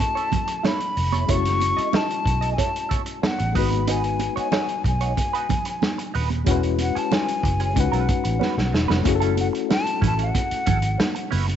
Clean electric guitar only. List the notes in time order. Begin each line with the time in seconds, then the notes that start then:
0.00 muted clean electric guitar stroke
0.15 E4 A4 C#5
0.32 muted clean electric guitar stroke
0.48 muted clean electric guitar stroke
0.63 E4 A4 C#5
0.97 muted clean electric guitar stroke
1.12 E4 A4 C#5
1.28 E4 A4 C#5
1.61 muted clean electric guitar stroke
1.77 E4 A4 D#5
1.93 E4 A4 D#5
2.25 muted clean electric guitar stroke
2.41 E4 A4 D#5
2.57 E4 A4 C#5
2.73 muted clean electric guitar stroke
2.89 E4 A4 C#5
3.06 muted clean electric guitar stroke
3.22 muted clean electric guitar stroke
3.39 muted clean electric guitar stroke
3.55 D#4 F#4 B4
3.72 muted clean electric guitar stroke
3.88 D#4 F#4 B4
4.20 muted clean electric guitar stroke
4.36 D#4 F#4 C#5
4.51 D#4 F#4 C#5
4.85 muted clean electric guitar stroke
5.01 D#4 F#4 C#5
5.17 muted clean electric guitar stroke
5.33 D#4 F#4 B4
5.51 muted clean electric guitar stroke
5.66 muted clean electric guitar stroke
5.83 muted clean electric guitar stroke
5.98 muted clean electric guitar stroke
6.14 D#4 F#4 B4
6.31 muted clean electric guitar stroke
6.46 G#3 C#4 F#4
6.79 muted clean electric guitar stroke
6.95 G#3 C#4 G#4
7.11 G#3 C#4 G#4
7.44 muted clean electric guitar stroke
7.60 G#3 C#4 G#4
7.76 muted clean electric guitar stroke
7.92 C#4 F#4 B4
8.08 muted clean electric guitar stroke
8.24 muted clean electric guitar stroke
8.39 C#4 F#4 B4
8.73 muted clean electric guitar stroke
8.88 C#4 F#4 B4
9.05 muted clean electric guitar stroke
9.20 C#4 E4 A4
9.37 muted clean electric guitar stroke
9.53 muted clean electric guitar stroke
9.69 muted clean electric guitar stroke
9.86 muted clean electric guitar stroke
10.01 C#4 E4 B4
10.18 C#4 E4 A4
10.34 muted clean electric guitar stroke
10.66 C#4 E4 A4
10.82 muted clean electric guitar stroke
10.98 muted clean electric guitar stroke
11.15 muted clean electric guitar stroke
11.31 C#4 E4 B4
11.48 muted clean electric guitar stroke